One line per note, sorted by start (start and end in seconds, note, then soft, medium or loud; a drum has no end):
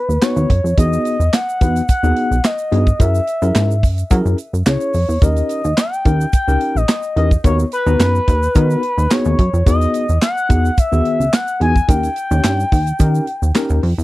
0.00 0.24 B4 loud
0.09 0.18 D#2 medium
0.09 shaker medium
0.22 0.47 B3 medium
0.22 0.47 D#4 medium
0.22 0.47 F#4 medium
0.22 0.48 B4 medium
0.22 0.77 C#5 loud
0.22 snare loud
0.22 clap medium
0.22 closed hi-hat medium
0.22 shaker medium
0.36 0.46 D#2 loud
0.36 shaker soft
0.50 0.61 F#2 medium
0.50 kick medium
0.50 closed hi-hat medium
0.64 0.74 F2 medium
0.64 shaker soft
0.77 0.98 E2 loud
0.77 1.16 B3 medium
0.77 1.16 D#4 medium
0.77 1.16 F#4 medium
0.77 1.16 G#4 medium
0.77 1.35 D#5 loud
0.77 kick loud
0.77 closed hi-hat medium
0.77 shaker medium
0.93 shaker medium
1.05 closed hi-hat medium
1.05 shaker medium
1.20 1.29 E2 medium
1.20 shaker medium
1.33 1.89 F#5 medium
1.33 snare loud
1.33 clap medium
1.33 closed hi-hat medium
1.33 shaker medium
1.49 shaker soft
1.61 1.82 E2 medium
1.61 1.80 B3 medium
1.61 1.80 D#4 medium
1.61 1.81 F#4 medium
1.61 1.81 B4 medium
1.61 kick medium
1.61 closed hi-hat medium
1.61 shaker medium
1.76 closed hi-hat soft
1.76 shaker medium
1.89 2.46 F#5 loud
1.89 kick loud
1.89 closed hi-hat medium
1.89 shaker medium
2.03 2.13 D#2 medium
2.03 2.35 B3 medium
2.03 2.35 D#4 medium
2.03 2.35 F#4 medium
2.03 2.35 G#4 medium
2.03 shaker soft
2.16 closed hi-hat medium
2.31 2.41 B1 medium
2.31 shaker medium
2.44 3.02 D#5 medium
2.44 snare loud
2.44 clap medium
2.44 closed hi-hat medium
2.44 shaker medium
2.58 shaker soft
2.71 2.93 G2 medium
2.71 2.85 B3 medium
2.71 2.85 D#4 medium
2.71 2.85 F#4 medium
2.71 2.85 G#4 medium
2.71 closed hi-hat medium
2.87 kick medium
2.87 shaker medium
2.99 3.20 F#2 loud
2.99 3.19 C#4 medium
2.99 3.19 E4 medium
2.99 3.19 G#4 medium
2.99 3.19 A#4 medium
2.99 3.84 E5 medium
2.99 kick loud
2.99 closed hi-hat medium
2.99 shaker medium
3.15 shaker medium
3.27 closed hi-hat medium
3.27 shaker soft
3.42 3.52 F#2 loud
3.42 3.73 C#4 medium
3.42 3.74 E4 medium
3.42 3.74 G#4 medium
3.42 3.74 A#4 medium
3.42 shaker medium
3.55 3.85 G#2 medium
3.55 snare medium
3.55 clap medium
3.55 closed hi-hat loud
3.55 shaker medium
3.71 shaker soft
3.83 4.04 F#2 medium
3.83 kick medium
3.83 open hi-hat medium
3.83 shaker medium
3.98 closed hi-hat soft
3.98 shaker medium
4.11 4.22 F#3 loud
4.11 4.36 C#4 medium
4.11 4.36 E4 medium
4.11 4.36 G#4 medium
4.11 4.36 A#4 medium
4.11 kick loud
4.11 closed hi-hat loud
4.11 shaker medium
4.25 4.35 F#2 medium
4.25 shaker medium
4.38 closed hi-hat medium
4.38 shaker soft
4.53 4.63 F#2 medium
4.53 shaker medium
4.66 4.77 C#2 medium
4.66 4.92 C#4 medium
4.66 4.92 E4 medium
4.66 4.92 G#4 medium
4.66 4.92 C#5 medium
4.66 5.25 C#5 medium
4.66 snare loud
4.66 clap medium
4.66 closed hi-hat medium
4.66 shaker medium
4.81 shaker soft
4.94 5.05 F2 medium
4.94 open hi-hat medium
4.94 shaker soft
5.09 5.18 E2 medium
5.09 shaker medium
5.22 5.42 D#2 loud
5.22 5.60 C#4 medium
5.22 5.60 D#4 medium
5.22 5.61 G4 medium
5.22 5.61 A#4 medium
5.22 5.80 D#5 loud
5.22 kick loud
5.22 closed hi-hat medium
5.22 shaker medium
5.36 closed hi-hat medium
5.36 shaker medium
5.49 closed hi-hat medium
5.49 shaker soft
5.64 5.74 D#2 loud
5.64 shaker medium
5.77 6.34 G5 loud
5.77 snare medium
5.77 clap medium
5.77 closed hi-hat medium
5.77 shaker medium
5.93 shaker soft
6.05 6.26 D#2 loud
6.05 6.25 C#4 medium
6.05 6.25 D#4 medium
6.05 6.25 G4 medium
6.05 6.25 A#4 medium
6.05 kick medium
6.05 closed hi-hat medium
6.05 shaker medium
6.21 shaker medium
6.33 6.78 G5 loud
6.33 kick loud
6.33 closed hi-hat medium
6.33 shaker medium
6.47 6.57 C#2 medium
6.47 6.79 C#4 medium
6.47 6.79 D#4 medium
6.47 6.79 G4 medium
6.47 6.79 A#4 medium
6.47 shaker medium
6.61 closed hi-hat medium
6.75 6.85 A#1 medium
6.75 7.16 D#5 medium
6.75 shaker medium
6.89 snare loud
6.89 clap medium
6.89 closed hi-hat medium
6.89 shaker medium
7.03 shaker soft
7.16 7.37 E2 medium
7.16 7.30 C#4 medium
7.16 7.30 D#4 medium
7.16 7.30 G4 medium
7.16 7.30 A#4 medium
7.16 7.29 D#5 medium
7.16 closed hi-hat medium
7.31 kick medium
7.31 shaker medium
7.44 7.65 D#2 loud
7.44 7.64 B3 medium
7.44 7.64 D#4 medium
7.44 7.64 F#4 medium
7.44 7.64 A#4 medium
7.44 7.57 C#5 loud
7.44 kick loud
7.44 closed hi-hat medium
7.44 shaker medium
7.59 shaker medium
7.72 9.13 B4 loud
7.72 closed hi-hat medium
7.72 shaker soft
7.86 7.96 D#2 loud
7.86 8.18 B3 medium
7.86 8.18 D#4 medium
7.86 8.18 F#4 medium
7.86 8.18 A#5 medium
7.86 shaker medium
8.00 8.20 F#2 medium
8.00 snare loud
8.00 clap medium
8.00 closed hi-hat medium
8.00 shaker medium
8.15 shaker soft
8.28 8.48 D#2 medium
8.28 kick medium
8.28 closed hi-hat medium
8.28 shaker medium
8.43 shaker medium
8.55 8.76 D#3 loud
8.55 8.81 B3 medium
8.55 8.81 D#4 medium
8.55 8.81 F#4 medium
8.55 8.81 A#4 medium
8.55 kick loud
8.55 closed hi-hat loud
8.55 shaker medium
8.70 shaker medium
8.83 closed hi-hat medium
8.98 9.07 D#2 medium
8.98 shaker medium
9.11 9.36 B3 medium
9.11 9.36 D#4 medium
9.11 9.36 F#4 medium
9.11 9.36 G#4 medium
9.11 9.67 C#5 loud
9.11 snare loud
9.11 clap medium
9.11 closed hi-hat medium
9.11 shaker medium
9.25 9.35 D#2 medium
9.25 shaker soft
9.39 9.50 F#2 medium
9.39 kick medium
9.39 closed hi-hat medium
9.53 9.63 F2 medium
9.53 shaker soft
9.66 9.87 E2 loud
9.66 10.05 B3 medium
9.66 10.05 D#4 medium
9.66 10.05 F#4 medium
9.66 10.05 G#4 medium
9.66 10.18 D#5 loud
9.66 kick loud
9.66 closed hi-hat medium
9.66 shaker medium
9.81 closed hi-hat soft
9.81 shaker medium
9.94 closed hi-hat medium
9.94 shaker soft
10.09 10.19 E2 medium
10.09 shaker medium
10.22 10.80 F#5 loud
10.22 snare loud
10.22 clap medium
10.22 closed hi-hat medium
10.22 shaker medium
10.37 shaker soft
10.49 10.70 E2 medium
10.49 10.69 B3 medium
10.49 10.69 D#4 medium
10.49 10.69 F#4 medium
10.49 10.69 G#4 medium
10.49 kick loud
10.49 closed hi-hat medium
10.49 shaker medium
10.65 shaker medium
10.78 11.36 E5 loud
10.78 kick loud
10.78 closed hi-hat loud
10.78 shaker medium
10.92 11.02 D#2 medium
10.92 11.24 D#3 medium
10.92 11.23 B3 medium
10.92 11.24 F#4 medium
10.92 11.24 G#4 medium
10.92 shaker soft
11.05 closed hi-hat medium
11.20 11.30 C#2 medium
11.20 shaker medium
11.33 11.61 F#5 loud
11.33 snare loud
11.33 clap medium
11.33 closed hi-hat medium
11.33 shaker medium
11.48 shaker soft
11.60 11.81 E2 medium
11.60 11.74 B3 medium
11.60 11.74 D#4 medium
11.60 11.74 F#4 medium
11.60 11.74 G#4 medium
11.60 11.91 G#5 loud
11.60 closed hi-hat medium
11.76 kick medium
11.76 shaker soft
11.88 12.09 D#2 loud
11.88 12.08 C#4 medium
11.88 12.08 D#4 medium
11.88 12.08 G4 medium
11.88 12.08 A#4 medium
11.88 13.83 G5 loud
11.88 kick loud
11.88 closed hi-hat medium
11.88 shaker medium
12.03 closed hi-hat soft
12.03 shaker medium
12.16 closed hi-hat medium
12.16 shaker soft
12.31 12.41 D#2 loud
12.31 12.62 C#4 medium
12.31 12.63 D#4 medium
12.31 12.63 G4 medium
12.31 12.63 C#5 medium
12.31 shaker medium
12.44 12.65 G2 loud
12.44 snare medium
12.44 clap medium
12.44 closed hi-hat loud
12.44 shaker medium
12.60 shaker soft
12.72 12.93 D#2 medium
12.72 kick medium
12.72 open hi-hat medium
12.72 shaker medium
12.87 closed hi-hat medium
12.87 shaker medium
12.99 13.20 D#3 medium
12.99 13.25 C#4 medium
12.99 13.25 D#4 medium
12.99 13.25 G4 medium
12.99 13.25 A#4 medium
12.99 kick loud
12.99 closed hi-hat loud
12.99 shaker medium
13.15 shaker medium
13.27 closed hi-hat medium
13.42 13.52 D#2 medium
13.42 shaker medium
13.55 13.80 C#4 medium
13.55 13.80 D#4 medium
13.55 13.81 G4 medium
13.55 13.81 A#4 loud
13.55 snare loud
13.55 clap medium
13.55 closed hi-hat medium
13.55 shaker medium
13.70 13.80 D#2 loud
13.70 shaker soft
13.83 13.94 F2 medium
13.83 open hi-hat medium
13.98 14.04 E2 medium
13.98 shaker medium